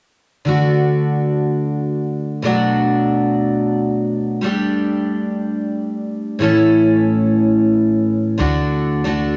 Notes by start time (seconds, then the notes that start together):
0.45 D3 A3 D4 F#4
2.42 B2 F#3 A3 D4 F#4
4.41 G3 A3 D4
4.46 G4
6.39 A2 E3 A3 C#4
6.43 A4
8.38 D2 D3 A3 D4 F#4
9.04 D3 A3 D4 F#4